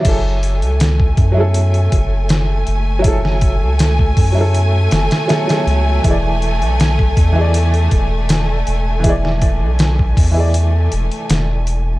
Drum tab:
CC |x---------------|----------------|----------------|----------------|
HH |x-xxx-x-xxx-x-x-|x-x-x-o-x-xxxxx-|x-xxx-x-xxx-x-x-|x-x-x-o-x-xxx-x-|
SD |----o-------o---|-o--o-----oooo--|----o-------o---|-o--o-------o---|
BD |o----oo---o-----|o-o--oo---------|o----oo---o-----|o-o--oo---------|